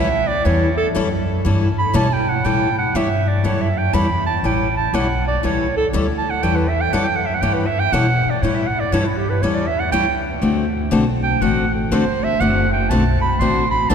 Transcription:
Already playing: D2 E5
0.27 D5
0.45 E2 E3 G3 C#4 E4 A4 C#5
0.77 A4
0.95 F#2 E3 G3 C#4 E4 A4
1.45 G2 E3 G3 C#4 E4 A4
1.79 B5
1.94 B2 E3 G3 C#4 E4 A4 A5
2.13 G5
2.29 F#5
2.44 A2 E3 G3 C#4 E4 A4 G5
2.78 F#5
2.94 G2 E3 G3 C#4 E4 A4 E5
3.28 D5
3.44 F#2 E3 G3 C#4 E4 A4 C#5
3.61 E5
3.78 G5
3.93 E2 E3 G3 C#4 E4 A4 B5
4.26 A5
4.43 A1 E3 G3 C#4 E4 A4 G5
4.77 A5
4.93 B1 E3 G3 C#4 E4 A4 F#5
5.27 D5
5.43 C#2 E3 G3 C#4 E4 A4 C#5
5.77 A4
5.93 D2 E3 G3 C#4 E4 A4
6.18 A5
6.30 F#5
6.43 E2 E3 G3 C#4 E4 A4 G5
6.56 B4
6.69 E5
6.81 G5
6.93 F#2 E3 G3 C#4 E4 A4 F#5
7.04 G5
7.16 F#5
7.26 E5
7.34 F#5
7.42 G2 E3 G3 C#4 E4 A4 G5
7.54 B4
7.66 E5
7.80 G5
7.92 B2 E3 G3 C#4 E4 A4 F#5
8.26 muted upright bass stroke
8.30 D5
8.42 A2 E3 G3 C#4 E4 A4 C#5
8.55 E5
8.67 F#5
8.80 D5
8.92 G2 E3 G3 C#4 E4 A4 C#5
9.05 E4
9.17 G4
9.30 B4
9.42 E2 E3 G3 C#4 E4 A4 C#5
9.54 D5
9.67 E5
9.79 F#5
9.92 C#2 E3 G3 C#4 E4 A4 G5
10.42 D2 D3 A3 C4 F#4 A4
10.91 B1 D3 A3 C4 F#4 A4
11.23 G5
11.41 A1 D3 A3 C4 F#4 A4 F#5
11.74 A4
11.91 G1 D3 A3 C4 F#4 A4 C5
12.24 E5
12.40 F#1 D3 A3 C4 F#4 A4 F#5
12.73 G5
12.90 B1 D3 A3 C4 F#4 A4 A5
13.21 B5, muted upright bass stroke
13.39 A1 D3 A3 C4 F#4 A4 C6
13.71 B5
13.89 C2 D3 A3 C4 F#4 A4 A5

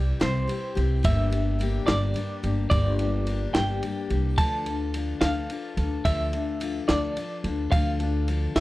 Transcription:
Already playing: C2 G3 C4 E4 G4 D5
0.20 C2 C3 G3 C4 E4 G4 C5, snare, ride
0.47 G3 C4 E4 G4, ride
0.75 C2 C4 E4 G4, ride
1.03 G1 G2 D3 G3 A#3 D4 G4 E5, kick, ride
1.30 G3 A#3 D4 G4, ride
1.59 G3 A#3 D4 G4, ride
1.86 G1 G2 D3 G3 A#3 D4 G4 D5, snare, ride
2.14 G3 A#3 D4 G4, ride
2.43 G1 G3 A#3 D4 G4, ride
2.70 G1 G2 D3 G3 A#3 D4 G4 D5, kick, ride
2.99 G3 A#3 D4 G4, ride
3.26 G3 A#3 D4 G4, ride
3.54 G1 G2 D3 G3 A#3 D4 G4 G5, snare, ride
3.82 G3 A#3 D4 G4, ride
4.10 C2 G3 A#3 D4 G4, ride
4.38 D2 D3 F3 D4 F4 A4 A5, kick, ride
4.66 D4 F4 A4, ride
4.94 F3 D4 F4, ride
4.98 A4
5.21 D2 F3 D4 F4 A4 F5, snare, ride
5.25 D3
5.50 F3 D4 F4, ride
5.54 A4
5.77 D2 D4 F4 A4, ride
6.05 D2 D3 F3 D4 F4 A4 E5, kick, ride
6.33 D4 F4 A4, ride
6.60 F3 D4 F4 A4, ride
6.88 D2 D3 F3 D4 F4 A4 D5, snare, ride
7.16 F3 D4 F4 A4, ride
7.44 D2 D4 F4 A4, ride
7.72 D2 D3 F3 D4 F4 A4 F5, kick, ride
7.99 D4 F4 A4, ride
8.28 F3 D4 F4 A4, ride
8.55 D2 F3 D4 F4 A4 E5, snare, ride

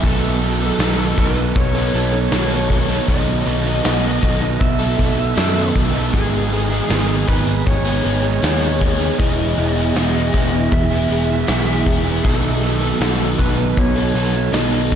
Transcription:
Already playing: B3
0.02 B1 B2 D#3 F#3 B3 D#4 A4, kick, open hi-hat
0.07 A4
0.41 F#3 B3 D#4 A4, open hi-hat
0.60 F#3 B3 D#4 A4
0.78 B1 B2 D#3 F#3 B3 D#4 A4, snare, open hi-hat, tambourine
0.98 F#3 B3 D#4 A4
1.17 B1 F#3 B3 D#4 A4 B4, kick, open hi-hat
1.35 F#3 B3 D#4 A4, muted overdriven electric guitar stroke
1.56 B1 C#5, kick, open hi-hat
1.74 F#3 B3 D#4 A4
1.93 B1 F#3 B3 D#4 A4, open hi-hat
2.12 F#3 B3 D#4 A4, muted overdriven electric guitar stroke
2.31 B1 B2 D#3 F#3 B3 D#4 A4, snare, open hi-hat, tambourine
2.50 F#3 B3 D#4 A4
2.70 F#3 B3 D#4 A4, kick, open hi-hat
2.88 F#3 B3 D#4 A4, snare
3.08 B1 B2 D#3 F#3 B3 D#4 A4 D#5, kick, open hi-hat
3.45 B1 F#3 B3 D#4 A4, open hi-hat
3.64 F#3 B3 D#4 A4
3.83 B1 B2 D#3 F#3 B3 D#4 A4, snare, open hi-hat, tambourine
4.04 F#3 B3 D#4 A4
4.21 B1 F#3 B3 D#4 A4, kick, open hi-hat
4.40 F#3 B3 D#4 A4, muted overdriven electric guitar stroke
4.60 B1 E5, kick, open hi-hat
4.79 F#3 B3 D#4 A4
4.98 F#3 B3 D#4 A4, kick, open hi-hat
5.18 F#3 B3 D#4 A4, muted overdriven electric guitar stroke
5.36 F#2 B2 D#3 F#3 B3 D#4 A4, snare, open hi-hat, tambourine
5.56 F#3 B3 D#4 A4
5.74 B1 F#3 B3 D#4 A4, kick, open hi-hat
5.93 F#3 B3 D#4 A4
6.12 G#1 G#2 D#3 F#3 G#3 B3 D#4 G#4, kick, open hi-hat
6.51 G#3 B3 D#4 G#4, open hi-hat
6.70 G#3 B3 D#4 G#4
6.89 G#1 G#2 D#3 G#3 B3 D#4 G#4, snare, open hi-hat, tambourine
7.08 G#3 B3 D#4 G#4
7.27 G#1 G#3 B3 D#4 G#4 B4, kick, open hi-hat
7.47 G#3 B3 D#4 G#4, muted overdriven electric guitar stroke
7.66 G#1 D#4 C#5, kick, open hi-hat
7.85 G#3 B3 D#4 G#4
8.03 G#1 G#3 B3 D#4 G#4, open hi-hat
8.22 G#3 B3 D#4 G#4, muted overdriven electric guitar stroke
8.42 D#2 G#2 D#3 G#3 B3 D#4 G#4, snare, open hi-hat, tambourine
8.62 G#3 B3 D#4 G#4
8.81 G#3 B3 D#4 G#4, kick, open hi-hat
8.99 G#3 B3 D#4 G#4
9.18 E1 E3 F#3 G#3 B3 E4 G#4 D#5, kick, open hi-hat
9.57 E1 G#3 B3 E4 G#4, open hi-hat
9.75 B3 E4 G#4
9.94 E1 E3 G#3 B3 E4 G#4, snare, open hi-hat, tambourine
10.14 B3 E4 G#4
10.33 E1 G#3 B3 E4 G#4, kick, open hi-hat
10.52 B3 E4 G#4, muted overdriven electric guitar stroke
10.72 E1 E5, kick, open hi-hat
10.90 B3 E4 G#4
11.09 E1 G#3 B3 E4 G#4, open hi-hat
11.29 B3 E4 G#4, muted overdriven electric guitar stroke
11.47 B1 E3 G#3 B3 E4 G#4, snare, open hi-hat, tambourine
11.67 B3 E4 G#4
11.85 G#3 B3 E4 G#4, kick, open hi-hat
12.05 B3 E4 G#4
12.23 B1 B2 D#3 F#3 B3 D#4 A4, kick, open hi-hat
12.62 F#3 B3 D#4 A4, open hi-hat
12.81 F#3 B3 D#4 A4
12.99 B1 B2 D#3 F#3 B3 D#4 A4, snare, open hi-hat, tambourine
13.18 F#3 B3 D#4 A4
13.38 B1 F#3 B3 D#4 A4 B4, kick, open hi-hat
13.57 F#3 B3 D#4 A4, muted overdriven electric guitar stroke
13.77 B1 C#5, kick, open hi-hat
13.95 F#3 B3 D#4 A4
14.14 B1 F#3 B3 D#4 A4, open hi-hat
14.34 F#3 B3 D#4 A4, muted overdriven electric guitar stroke
14.52 B1 B2 D#3 F#3 B3 D#4 A4 D#5, snare, open hi-hat, tambourine
14.72 F#3 B3 D#4 A4
14.91 F#3 A4, kick, open hi-hat

